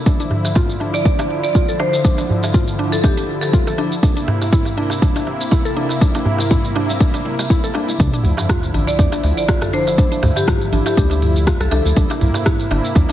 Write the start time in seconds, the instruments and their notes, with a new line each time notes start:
Already playing: analog synth pad E4
0.06 analog synth pad D3 F3, synth arpeggio sound D4, kick, closed hi-hat, shaker
0.20 synth arpeggio sound D4, closed hi-hat, shaker
0.31 darbuka tek, darbuka dum
0.45 mid tom, darbuka ka, shaker
0.55 synth arpeggio sound F4, kick, closed hi-hat, mid tom, darbuka tek, darbuka dum, shaker
0.69 closed hi-hat, shaker
0.80 synth arpeggio sound D4, mid tom, darbuka ka
0.94 marimba D5, closed hi-hat, darbuka tek, shaker
1.05 synth arpeggio sound D4, kick, closed hi-hat, shaker
1.19 synth arpeggio sound D4, closed hi-hat, darbuka ka, darbuka tek, shaker
1.30 mid tom
1.44 marimba D5, closed hi-hat, shaker
1.55 synth arpeggio sound F4, kick, closed hi-hat, darbuka tek, shaker
1.68 synth arpeggio sound A4, closed hi-hat, shaker
1.80 synth arpeggio sound D4, marimba C5, mid tom, darbuka tek
1.93 closed hi-hat, darbuka ka, shaker
2.04 synth arpeggio sound D4, kick, closed hi-hat, shaker
2.18 synth arpeggio sound D4, closed hi-hat, darbuka tek, shaker
2.30 darbuka dum
2.43 closed hi-hat, darbuka ka, darbuka tek, shaker
2.54 synth arpeggio sound F4, kick, closed hi-hat, darbuka dum, shaker
2.68 closed hi-hat, shaker
2.79 synth arpeggio sound D4, mid tom, darbuka ka, darbuka tek
2.92 marimba A4, closed hi-hat, shaker
3.04 synth arpeggio sound D4, marimba G4, kick, closed hi-hat, darbuka tek, shaker
3.17 synth arpeggio sound D4, closed hi-hat, shaker
3.42 marimba A4, closed hi-hat, mid tom, darbuka tek, shaker
3.53 synth arpeggio sound F4, kick, closed hi-hat, shaker
3.67 synth arpeggio sound A4, closed hi-hat, darbuka tek, shaker
3.78 synth arpeggio sound D4, mid tom, darbuka ka
3.92 closed hi-hat, shaker
4.03 analog synth pad C3 A#3 E4, synth arpeggio sound D4, kick, closed hi-hat, mid tom, darbuka tek, shaker
4.17 synth arpeggio sound D4, closed hi-hat, shaker
4.28 mid tom, darbuka tek, darbuka dum
4.42 darbuka ka, shaker
4.53 synth arpeggio sound E4, kick, closed hi-hat, mid tom, darbuka dum, shaker
4.65 closed hi-hat, darbuka tek, shaker
4.77 synth arpeggio sound D4, mid tom, darbuka ka
4.90 closed hi-hat, darbuka tek, shaker
5.02 synth arpeggio sound D4, kick, closed hi-hat, mid tom, shaker
5.16 synth arpeggio sound D4, closed hi-hat, darbuka ka, shaker
5.27 mid tom, darbuka tek
5.41 closed hi-hat, shaker
5.51 synth arpeggio sound E4, kick, closed hi-hat, mid tom, darbuka tek, shaker
5.65 synth arpeggio sound A4, closed hi-hat, shaker
5.76 synth arpeggio sound D4, mid tom
5.89 closed hi-hat, darbuka ka, darbuka tek, shaker
6.01 synth arpeggio sound D4, kick, closed hi-hat, mid tom, shaker
6.15 synth arpeggio sound D4, closed hi-hat, mid tom, darbuka tek, shaker
6.25 mid tom, darbuka dum
6.38 closed hi-hat, mid tom, darbuka ka, shaker
6.51 synth arpeggio sound E4, kick, closed hi-hat, mid tom, darbuka tek, darbuka dum, shaker
6.65 closed hi-hat, mid tom, shaker
6.75 synth arpeggio sound D4, mid tom, darbuka ka, darbuka tek
6.89 closed hi-hat, mid tom, shaker
7.00 synth arpeggio sound D4, kick, closed hi-hat, mid tom, shaker
7.14 synth arpeggio sound D4, closed hi-hat, mid tom, darbuka tek, shaker
7.25 mid tom
7.39 closed hi-hat, mid tom, darbuka tek, shaker
7.50 synth arpeggio sound E4, kick, closed hi-hat, mid tom, shaker
7.64 synth arpeggio sound A4, closed hi-hat, mid tom, shaker
7.74 synth arpeggio sound D4, mid tom, darbuka ka, darbuka tek
7.89 closed hi-hat, mid tom, shaker
8.00 analog synth bass D2, analog synth pad D3 F3 E4, synth arpeggio sound D4, kick, closed hi-hat, sub drop, darbuka tek, shaker
8.13 synth arpeggio sound D4, closed hi-hat, shaker
8.23 analog synth bass D2, mid tom, open hi-hat, darbuka dum
8.37 closed hi-hat, darbuka ka, darbuka tek, shaker
8.49 synth arpeggio sound F4, kick, cross-stick, closed hi-hat, darbuka dum, shaker
8.63 closed hi-hat, darbuka tek, shaker
8.74 analog synth bass A1, synth arpeggio sound D4, open hi-hat, darbuka ka
8.87 marimba D5, closed hi-hat, shaker
8.99 analog synth bass F2, synth arpeggio sound D4, kick, closed hi-hat, darbuka tek, shaker
9.12 synth arpeggio sound D4, closed hi-hat, darbuka ka, shaker
9.24 analog synth bass D2, open hi-hat, darbuka tek
9.37 marimba D5, closed hi-hat, shaker
9.48 synth arpeggio sound F4, kick, cross-stick, closed hi-hat, shaker
9.61 synth arpeggio sound A4, cross-stick, closed hi-hat, mid tom, darbuka tek, shaker
9.73 synth arpeggio sound D4, marimba C5, open hi-hat
9.87 closed hi-hat, darbuka ka, darbuka tek, shaker
9.98 synth arpeggio sound D4, kick, closed hi-hat, shaker
10.12 synth arpeggio sound D4, closed hi-hat, shaker
10.23 analog synth bass D2, mid tom, open hi-hat, darbuka tek, darbuka dum
10.36 marimba G4, closed hi-hat, darbuka ka, shaker
10.47 synth arpeggio sound F4, kick, cross-stick, closed hi-hat, darbuka tek, darbuka dum, shaker
10.61 closed hi-hat, shaker
10.73 analog synth bass A1, synth arpeggio sound D4, open hi-hat, darbuka ka
10.86 marimba G4, closed hi-hat, darbuka tek, shaker
10.97 analog synth bass D2, synth arpeggio sound D4, kick, closed hi-hat, shaker
11.10 synth arpeggio sound D4, closed hi-hat, darbuka tek, shaker
11.22 mid tom, open hi-hat
11.36 closed hi-hat, shaker
11.47 synth arpeggio sound F4, kick, cross-stick, mid tom, open hi-hat, darbuka tek, shaker
11.60 analog synth bass C2, synth arpeggio sound A4, cross-stick, closed hi-hat, shaker
11.71 analog synth bass C2, synth arpeggio sound D4, marimba A4, open hi-hat, darbuka ka, darbuka tek
11.85 analog synth bass D2, closed hi-hat, shaker
11.96 analog synth bass C2, analog synth pad C3 A#3, synth arpeggio sound D4, kick, closed hi-hat, shaker
12.10 synth arpeggio sound D4, closed hi-hat, darbuka tek, shaker
12.21 analog synth bass C2, mid tom, open hi-hat, darbuka dum
12.34 closed hi-hat, darbuka ka, darbuka tek, shaker
12.46 synth arpeggio sound E4, kick, cross-stick, closed hi-hat, darbuka dum, shaker
12.60 closed hi-hat, shaker
12.71 analog synth bass G1, synth arpeggio sound D4, open hi-hat, darbuka ka, darbuka tek
12.84 closed hi-hat, shaker
12.95 analog synth bass E2, synth arpeggio sound D4, kick, closed hi-hat, darbuka tek, shaker
13.09 darbuka ka